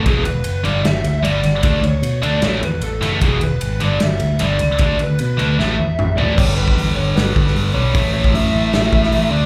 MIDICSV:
0, 0, Header, 1, 5, 480
1, 0, Start_track
1, 0, Tempo, 393701
1, 69, Time_signature, 4, 2, 24, 8
1, 11531, End_track
2, 0, Start_track
2, 0, Title_t, "Lead electric guitar"
2, 0, Program_c, 0, 29
2, 79, Note_on_c, 0, 68, 88
2, 292, Note_off_c, 0, 68, 0
2, 296, Note_on_c, 0, 71, 90
2, 751, Note_off_c, 0, 71, 0
2, 788, Note_on_c, 0, 74, 86
2, 1011, Note_off_c, 0, 74, 0
2, 1015, Note_on_c, 0, 76, 89
2, 1505, Note_off_c, 0, 76, 0
2, 1509, Note_on_c, 0, 74, 84
2, 1959, Note_off_c, 0, 74, 0
2, 1983, Note_on_c, 0, 74, 91
2, 2248, Note_off_c, 0, 74, 0
2, 2248, Note_on_c, 0, 73, 94
2, 2715, Note_off_c, 0, 73, 0
2, 2719, Note_on_c, 0, 74, 90
2, 2970, Note_off_c, 0, 74, 0
2, 2970, Note_on_c, 0, 73, 75
2, 3214, Note_off_c, 0, 73, 0
2, 3214, Note_on_c, 0, 71, 90
2, 3451, Note_on_c, 0, 69, 75
2, 3454, Note_off_c, 0, 71, 0
2, 3781, Note_off_c, 0, 69, 0
2, 3966, Note_on_c, 0, 68, 76
2, 4168, Note_off_c, 0, 68, 0
2, 4184, Note_on_c, 0, 71, 87
2, 4667, Note_off_c, 0, 71, 0
2, 4687, Note_on_c, 0, 74, 86
2, 4911, Note_off_c, 0, 74, 0
2, 4913, Note_on_c, 0, 76, 93
2, 5346, Note_off_c, 0, 76, 0
2, 5407, Note_on_c, 0, 74, 76
2, 5834, Note_off_c, 0, 74, 0
2, 5884, Note_on_c, 0, 74, 80
2, 6111, Note_off_c, 0, 74, 0
2, 6126, Note_on_c, 0, 71, 72
2, 6324, Note_off_c, 0, 71, 0
2, 6339, Note_on_c, 0, 71, 77
2, 6555, Note_off_c, 0, 71, 0
2, 6594, Note_on_c, 0, 71, 79
2, 6803, Note_off_c, 0, 71, 0
2, 6814, Note_on_c, 0, 76, 80
2, 7480, Note_off_c, 0, 76, 0
2, 7513, Note_on_c, 0, 74, 81
2, 7741, Note_off_c, 0, 74, 0
2, 7759, Note_on_c, 0, 73, 100
2, 7998, Note_off_c, 0, 73, 0
2, 8003, Note_on_c, 0, 71, 103
2, 8449, Note_off_c, 0, 71, 0
2, 8480, Note_on_c, 0, 73, 95
2, 8726, Note_off_c, 0, 73, 0
2, 8726, Note_on_c, 0, 71, 99
2, 8964, Note_off_c, 0, 71, 0
2, 8979, Note_on_c, 0, 71, 106
2, 9416, Note_off_c, 0, 71, 0
2, 9433, Note_on_c, 0, 73, 104
2, 9881, Note_off_c, 0, 73, 0
2, 9924, Note_on_c, 0, 73, 101
2, 10144, Note_off_c, 0, 73, 0
2, 10173, Note_on_c, 0, 76, 101
2, 11349, Note_on_c, 0, 74, 97
2, 11397, Note_off_c, 0, 76, 0
2, 11531, Note_off_c, 0, 74, 0
2, 11531, End_track
3, 0, Start_track
3, 0, Title_t, "Distorted electric guitar"
3, 0, Program_c, 1, 30
3, 69, Note_on_c, 1, 40, 85
3, 72, Note_on_c, 1, 47, 83
3, 79, Note_on_c, 1, 52, 93
3, 262, Note_off_c, 1, 40, 0
3, 264, Note_off_c, 1, 47, 0
3, 267, Note_off_c, 1, 52, 0
3, 779, Note_on_c, 1, 43, 83
3, 785, Note_on_c, 1, 50, 86
3, 787, Note_on_c, 1, 55, 103
3, 978, Note_off_c, 1, 43, 0
3, 981, Note_off_c, 1, 50, 0
3, 982, Note_off_c, 1, 55, 0
3, 1497, Note_on_c, 1, 43, 91
3, 1503, Note_on_c, 1, 50, 91
3, 1503, Note_on_c, 1, 55, 90
3, 1698, Note_off_c, 1, 43, 0
3, 1701, Note_off_c, 1, 50, 0
3, 1701, Note_off_c, 1, 55, 0
3, 1993, Note_on_c, 1, 50, 80
3, 2002, Note_on_c, 1, 57, 89
3, 2006, Note_on_c, 1, 62, 90
3, 2187, Note_off_c, 1, 50, 0
3, 2191, Note_off_c, 1, 57, 0
3, 2193, Note_off_c, 1, 62, 0
3, 2707, Note_on_c, 1, 50, 87
3, 2718, Note_on_c, 1, 57, 93
3, 2721, Note_on_c, 1, 62, 85
3, 2905, Note_off_c, 1, 50, 0
3, 2910, Note_off_c, 1, 57, 0
3, 2912, Note_off_c, 1, 62, 0
3, 2949, Note_on_c, 1, 45, 98
3, 2953, Note_on_c, 1, 52, 91
3, 2956, Note_on_c, 1, 57, 93
3, 3146, Note_off_c, 1, 45, 0
3, 3148, Note_off_c, 1, 52, 0
3, 3150, Note_off_c, 1, 57, 0
3, 3672, Note_on_c, 1, 45, 77
3, 3680, Note_on_c, 1, 52, 96
3, 3686, Note_on_c, 1, 57, 94
3, 3868, Note_off_c, 1, 45, 0
3, 3872, Note_off_c, 1, 52, 0
3, 3875, Note_off_c, 1, 57, 0
3, 3911, Note_on_c, 1, 40, 86
3, 3923, Note_on_c, 1, 47, 93
3, 3924, Note_on_c, 1, 52, 93
3, 4108, Note_off_c, 1, 40, 0
3, 4114, Note_off_c, 1, 47, 0
3, 4115, Note_off_c, 1, 52, 0
3, 4639, Note_on_c, 1, 43, 83
3, 4644, Note_on_c, 1, 50, 102
3, 4646, Note_on_c, 1, 55, 110
3, 4833, Note_off_c, 1, 43, 0
3, 4835, Note_off_c, 1, 50, 0
3, 4836, Note_off_c, 1, 55, 0
3, 5365, Note_on_c, 1, 43, 90
3, 5377, Note_on_c, 1, 50, 95
3, 5378, Note_on_c, 1, 55, 90
3, 5556, Note_off_c, 1, 43, 0
3, 5562, Note_off_c, 1, 50, 0
3, 5563, Note_off_c, 1, 55, 0
3, 5847, Note_on_c, 1, 50, 76
3, 5856, Note_on_c, 1, 57, 77
3, 5859, Note_on_c, 1, 62, 94
3, 6038, Note_off_c, 1, 50, 0
3, 6042, Note_off_c, 1, 57, 0
3, 6043, Note_off_c, 1, 62, 0
3, 6552, Note_on_c, 1, 50, 84
3, 6561, Note_on_c, 1, 57, 91
3, 6566, Note_on_c, 1, 62, 99
3, 6750, Note_off_c, 1, 50, 0
3, 6755, Note_off_c, 1, 57, 0
3, 6758, Note_off_c, 1, 62, 0
3, 6816, Note_on_c, 1, 45, 89
3, 6822, Note_on_c, 1, 52, 95
3, 6824, Note_on_c, 1, 57, 103
3, 7002, Note_off_c, 1, 45, 0
3, 7005, Note_off_c, 1, 52, 0
3, 7006, Note_off_c, 1, 57, 0
3, 7537, Note_on_c, 1, 45, 85
3, 7539, Note_on_c, 1, 52, 86
3, 7544, Note_on_c, 1, 57, 87
3, 7723, Note_off_c, 1, 45, 0
3, 7724, Note_off_c, 1, 52, 0
3, 7726, Note_off_c, 1, 57, 0
3, 7763, Note_on_c, 1, 43, 86
3, 7773, Note_on_c, 1, 50, 91
3, 7793, Note_on_c, 1, 55, 100
3, 9419, Note_off_c, 1, 55, 0
3, 9426, Note_off_c, 1, 43, 0
3, 9431, Note_off_c, 1, 50, 0
3, 9433, Note_on_c, 1, 55, 86
3, 9456, Note_on_c, 1, 50, 78
3, 9470, Note_on_c, 1, 43, 62
3, 9662, Note_off_c, 1, 55, 0
3, 9673, Note_off_c, 1, 50, 0
3, 9680, Note_off_c, 1, 43, 0
3, 9687, Note_on_c, 1, 45, 95
3, 9696, Note_on_c, 1, 52, 100
3, 9708, Note_on_c, 1, 57, 87
3, 11338, Note_off_c, 1, 45, 0
3, 11343, Note_on_c, 1, 50, 91
3, 11347, Note_off_c, 1, 52, 0
3, 11357, Note_off_c, 1, 57, 0
3, 11357, Note_on_c, 1, 57, 79
3, 11374, Note_on_c, 1, 62, 102
3, 11531, Note_off_c, 1, 50, 0
3, 11531, Note_off_c, 1, 57, 0
3, 11531, Note_off_c, 1, 62, 0
3, 11531, End_track
4, 0, Start_track
4, 0, Title_t, "Picked electric bass"
4, 0, Program_c, 2, 34
4, 78, Note_on_c, 2, 28, 84
4, 289, Note_off_c, 2, 28, 0
4, 318, Note_on_c, 2, 28, 78
4, 530, Note_off_c, 2, 28, 0
4, 553, Note_on_c, 2, 30, 77
4, 767, Note_off_c, 2, 30, 0
4, 805, Note_on_c, 2, 31, 82
4, 1014, Note_off_c, 2, 31, 0
4, 1033, Note_on_c, 2, 31, 81
4, 1248, Note_off_c, 2, 31, 0
4, 1267, Note_on_c, 2, 38, 85
4, 1485, Note_off_c, 2, 38, 0
4, 1503, Note_on_c, 2, 31, 80
4, 1723, Note_off_c, 2, 31, 0
4, 1744, Note_on_c, 2, 31, 88
4, 1964, Note_off_c, 2, 31, 0
4, 1992, Note_on_c, 2, 38, 81
4, 2208, Note_off_c, 2, 38, 0
4, 2227, Note_on_c, 2, 38, 84
4, 2446, Note_off_c, 2, 38, 0
4, 2466, Note_on_c, 2, 47, 89
4, 2686, Note_off_c, 2, 47, 0
4, 2705, Note_on_c, 2, 38, 83
4, 2925, Note_off_c, 2, 38, 0
4, 2950, Note_on_c, 2, 33, 91
4, 3168, Note_off_c, 2, 33, 0
4, 3197, Note_on_c, 2, 40, 81
4, 3413, Note_off_c, 2, 40, 0
4, 3421, Note_on_c, 2, 33, 82
4, 3644, Note_off_c, 2, 33, 0
4, 3668, Note_on_c, 2, 30, 83
4, 3888, Note_off_c, 2, 30, 0
4, 3927, Note_on_c, 2, 28, 94
4, 4139, Note_off_c, 2, 28, 0
4, 4166, Note_on_c, 2, 28, 83
4, 4379, Note_off_c, 2, 28, 0
4, 4406, Note_on_c, 2, 32, 91
4, 4619, Note_off_c, 2, 32, 0
4, 4661, Note_on_c, 2, 31, 77
4, 4867, Note_off_c, 2, 31, 0
4, 4892, Note_on_c, 2, 31, 85
4, 5102, Note_off_c, 2, 31, 0
4, 5133, Note_on_c, 2, 38, 74
4, 5343, Note_off_c, 2, 38, 0
4, 5377, Note_on_c, 2, 31, 92
4, 5586, Note_off_c, 2, 31, 0
4, 5614, Note_on_c, 2, 37, 82
4, 5824, Note_off_c, 2, 37, 0
4, 5844, Note_on_c, 2, 38, 87
4, 6059, Note_off_c, 2, 38, 0
4, 6100, Note_on_c, 2, 38, 80
4, 6308, Note_off_c, 2, 38, 0
4, 6344, Note_on_c, 2, 47, 83
4, 6550, Note_off_c, 2, 47, 0
4, 6581, Note_on_c, 2, 38, 83
4, 6788, Note_off_c, 2, 38, 0
4, 6815, Note_on_c, 2, 33, 80
4, 7025, Note_off_c, 2, 33, 0
4, 7062, Note_on_c, 2, 40, 73
4, 7269, Note_off_c, 2, 40, 0
4, 7303, Note_on_c, 2, 33, 81
4, 7509, Note_off_c, 2, 33, 0
4, 7536, Note_on_c, 2, 33, 88
4, 7745, Note_off_c, 2, 33, 0
4, 7775, Note_on_c, 2, 31, 93
4, 8140, Note_off_c, 2, 31, 0
4, 8247, Note_on_c, 2, 40, 84
4, 8430, Note_off_c, 2, 40, 0
4, 8477, Note_on_c, 2, 31, 90
4, 8664, Note_off_c, 2, 31, 0
4, 8728, Note_on_c, 2, 31, 94
4, 8910, Note_off_c, 2, 31, 0
4, 8972, Note_on_c, 2, 31, 89
4, 9153, Note_off_c, 2, 31, 0
4, 9202, Note_on_c, 2, 31, 86
4, 9386, Note_off_c, 2, 31, 0
4, 9437, Note_on_c, 2, 35, 86
4, 9623, Note_off_c, 2, 35, 0
4, 9691, Note_on_c, 2, 33, 96
4, 10055, Note_off_c, 2, 33, 0
4, 10167, Note_on_c, 2, 42, 97
4, 10348, Note_off_c, 2, 42, 0
4, 10411, Note_on_c, 2, 33, 89
4, 10590, Note_off_c, 2, 33, 0
4, 10653, Note_on_c, 2, 33, 96
4, 10831, Note_off_c, 2, 33, 0
4, 10878, Note_on_c, 2, 33, 91
4, 11061, Note_off_c, 2, 33, 0
4, 11113, Note_on_c, 2, 33, 92
4, 11298, Note_off_c, 2, 33, 0
4, 11353, Note_on_c, 2, 38, 88
4, 11531, Note_off_c, 2, 38, 0
4, 11531, End_track
5, 0, Start_track
5, 0, Title_t, "Drums"
5, 71, Note_on_c, 9, 51, 88
5, 72, Note_on_c, 9, 36, 113
5, 193, Note_off_c, 9, 51, 0
5, 194, Note_off_c, 9, 36, 0
5, 307, Note_on_c, 9, 51, 68
5, 429, Note_off_c, 9, 51, 0
5, 536, Note_on_c, 9, 51, 90
5, 658, Note_off_c, 9, 51, 0
5, 787, Note_on_c, 9, 51, 63
5, 909, Note_off_c, 9, 51, 0
5, 1033, Note_on_c, 9, 51, 84
5, 1041, Note_on_c, 9, 38, 104
5, 1154, Note_off_c, 9, 51, 0
5, 1163, Note_off_c, 9, 38, 0
5, 1272, Note_on_c, 9, 51, 76
5, 1394, Note_off_c, 9, 51, 0
5, 1519, Note_on_c, 9, 51, 89
5, 1641, Note_off_c, 9, 51, 0
5, 1749, Note_on_c, 9, 51, 68
5, 1757, Note_on_c, 9, 38, 35
5, 1870, Note_off_c, 9, 51, 0
5, 1879, Note_off_c, 9, 38, 0
5, 1986, Note_on_c, 9, 51, 90
5, 1993, Note_on_c, 9, 36, 111
5, 2108, Note_off_c, 9, 51, 0
5, 2115, Note_off_c, 9, 36, 0
5, 2238, Note_on_c, 9, 51, 61
5, 2360, Note_off_c, 9, 51, 0
5, 2477, Note_on_c, 9, 51, 86
5, 2598, Note_off_c, 9, 51, 0
5, 2720, Note_on_c, 9, 51, 63
5, 2842, Note_off_c, 9, 51, 0
5, 2949, Note_on_c, 9, 51, 81
5, 2957, Note_on_c, 9, 38, 106
5, 3070, Note_off_c, 9, 51, 0
5, 3079, Note_off_c, 9, 38, 0
5, 3203, Note_on_c, 9, 51, 68
5, 3325, Note_off_c, 9, 51, 0
5, 3432, Note_on_c, 9, 51, 83
5, 3553, Note_off_c, 9, 51, 0
5, 3687, Note_on_c, 9, 51, 69
5, 3696, Note_on_c, 9, 38, 35
5, 3809, Note_off_c, 9, 51, 0
5, 3818, Note_off_c, 9, 38, 0
5, 3917, Note_on_c, 9, 51, 88
5, 3921, Note_on_c, 9, 36, 105
5, 4039, Note_off_c, 9, 51, 0
5, 4043, Note_off_c, 9, 36, 0
5, 4157, Note_on_c, 9, 51, 62
5, 4279, Note_off_c, 9, 51, 0
5, 4399, Note_on_c, 9, 51, 93
5, 4521, Note_off_c, 9, 51, 0
5, 4636, Note_on_c, 9, 51, 66
5, 4758, Note_off_c, 9, 51, 0
5, 4875, Note_on_c, 9, 51, 84
5, 4884, Note_on_c, 9, 38, 96
5, 4997, Note_off_c, 9, 51, 0
5, 5006, Note_off_c, 9, 38, 0
5, 5116, Note_on_c, 9, 51, 73
5, 5238, Note_off_c, 9, 51, 0
5, 5353, Note_on_c, 9, 51, 95
5, 5475, Note_off_c, 9, 51, 0
5, 5596, Note_on_c, 9, 51, 76
5, 5718, Note_off_c, 9, 51, 0
5, 5834, Note_on_c, 9, 51, 92
5, 5845, Note_on_c, 9, 36, 106
5, 5956, Note_off_c, 9, 51, 0
5, 5967, Note_off_c, 9, 36, 0
5, 6085, Note_on_c, 9, 51, 63
5, 6206, Note_off_c, 9, 51, 0
5, 6323, Note_on_c, 9, 51, 87
5, 6445, Note_off_c, 9, 51, 0
5, 6573, Note_on_c, 9, 51, 64
5, 6695, Note_off_c, 9, 51, 0
5, 6820, Note_on_c, 9, 38, 54
5, 6942, Note_off_c, 9, 38, 0
5, 7301, Note_on_c, 9, 45, 78
5, 7423, Note_off_c, 9, 45, 0
5, 7536, Note_on_c, 9, 43, 90
5, 7657, Note_off_c, 9, 43, 0
5, 7778, Note_on_c, 9, 36, 121
5, 7785, Note_on_c, 9, 49, 127
5, 7900, Note_off_c, 9, 36, 0
5, 7907, Note_off_c, 9, 49, 0
5, 8140, Note_on_c, 9, 36, 88
5, 8262, Note_off_c, 9, 36, 0
5, 8267, Note_on_c, 9, 46, 69
5, 8389, Note_off_c, 9, 46, 0
5, 8740, Note_on_c, 9, 46, 67
5, 8748, Note_on_c, 9, 38, 105
5, 8862, Note_off_c, 9, 46, 0
5, 8870, Note_off_c, 9, 38, 0
5, 8974, Note_on_c, 9, 36, 92
5, 9096, Note_off_c, 9, 36, 0
5, 9108, Note_on_c, 9, 38, 34
5, 9217, Note_on_c, 9, 46, 70
5, 9229, Note_off_c, 9, 38, 0
5, 9339, Note_off_c, 9, 46, 0
5, 9687, Note_on_c, 9, 46, 69
5, 9690, Note_on_c, 9, 36, 127
5, 9808, Note_off_c, 9, 46, 0
5, 9812, Note_off_c, 9, 36, 0
5, 10049, Note_on_c, 9, 36, 90
5, 10171, Note_off_c, 9, 36, 0
5, 10178, Note_on_c, 9, 46, 66
5, 10300, Note_off_c, 9, 46, 0
5, 10644, Note_on_c, 9, 46, 54
5, 10652, Note_on_c, 9, 38, 104
5, 10766, Note_off_c, 9, 46, 0
5, 10774, Note_off_c, 9, 38, 0
5, 10882, Note_on_c, 9, 36, 87
5, 11004, Note_off_c, 9, 36, 0
5, 11015, Note_on_c, 9, 38, 34
5, 11120, Note_on_c, 9, 46, 68
5, 11137, Note_off_c, 9, 38, 0
5, 11242, Note_off_c, 9, 46, 0
5, 11531, End_track
0, 0, End_of_file